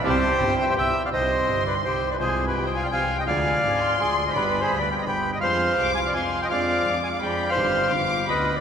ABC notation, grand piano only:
X:1
M:3/4
L:1/8
Q:1/4=168
K:C
V:1 name="Grand piano" clef=bass
[C,,C,E,G,CG] z [G,,,G,,E,G,CG] z [C,,C,E,G,CG] z | [K:Cm] [C,,C,E,G,CG]2 [G,,,G,,E,G,CG]2 [C,,C,E,G,CG]2 | [C,,C,F,G,A,C]2 [C,,C,F,A,CG]2 [C,,C,F,A,CG]2 | [D,,D,F,A,DA]2 [A,,,A,,F,A,DA]2 [D,,D,F,A,DA]2 |
[G,,,G,,D,G,=B,G]2 [D,,D,G,B,G]2 [G,,,G,,D,G,B,G]2 | [F,,F,A,CA]2 [C,,C,F,A,CA]2 [F,,F,A,CA]2 | [F,,F,A,DA]2 [F,,F,A,A]2 [F,,F,A,DA]2 | [G,,,G,,E,G,CG]2 [G,,,G,,D,G,=B,F]2 [D,,D,G,B,F]2 |]